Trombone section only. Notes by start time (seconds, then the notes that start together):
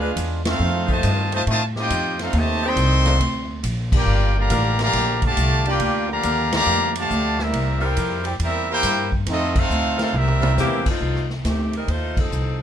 Already playing: G#3 D4 F4
0.45 A3 C4 F4
0.89 C3 D#3 A3
1.32 C3 D#3 A3
1.46 C3 D#3 A3
1.75 C4 D#4 G4
2.20 A3 C4 F4
2.35 C3 D#3 A3
2.63 D#3 G3 C4
3.94 A#3 D4 G4
4.36 D3 F3 A#3
4.79 D3 F3 A#3
5.22 D3 F3 A3
5.65 A#3 D4 G4
6.09 D3 F3 A#3
6.53 D3 F3 A#3
6.96 D3 F3 A3
7.39 G3 A#3 E4
7.82 A#3 E4 G4
8.42 G3 A#3 E4
8.69 A#3 E4 G4
9.28 A3 C4 D#4
9.57 A3 C4 F4
9.99 A3 C4 F4
10.14 G3 A#3 E4